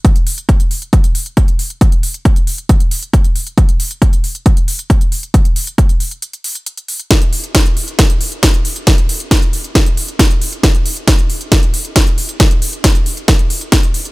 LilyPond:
\new DrumStaff \with { instrumentName = "Drums" } \drummode { \time 4/4 \tempo 4 = 136 <hh bd>16 hh16 hho16 hh16 <hh bd>16 hh16 hho16 hh16 <hh bd>16 hh16 hho16 hh16 <hh bd>16 hh16 hho16 hh16 | <hh bd>16 hh16 hho16 hh16 <hh bd>16 hh16 hho16 hh16 <hh bd>16 hh16 hho16 hh16 <hh bd>16 hh16 hho16 hh16 | <hh bd>16 hh16 hho16 hh16 <hh bd>16 hh16 hho16 hh16 <hh bd>16 hh16 hho16 hh16 <hh bd>16 hh16 hho16 hh16 | <hh bd>16 hh16 hho16 hh16 <hh bd>16 hh16 hho16 hh16 hh16 hh16 hho16 hh16 hh16 hh16 hho16 hh16 |
<hh bd sn>16 hh16 hho16 hh16 <hh bd sn>16 hh16 hho16 hh16 <hh bd sn>16 hh16 hho16 hh16 <hh bd sn>16 hh16 hho16 hh16 | <hh bd sn>16 hh16 hho16 hh16 <hh bd sn>16 hh16 hho16 hh16 <hh bd sn>16 hh16 hho16 hh16 <hh bd sn>16 hh16 hho16 hh16 | <hh bd sn>16 hh16 hho16 hh16 <hh bd sn>16 hh16 hho16 hh16 <hh bd sn>16 hh16 hho16 hh16 <hh bd sn>16 hh16 hho16 hh16 | <hh bd sn>16 hh16 hho16 hh16 <hh bd sn>16 hh16 hho16 hh16 <hh bd sn>16 hh16 hho16 hh16 <hh bd sn>16 hh16 hho16 hh16 | }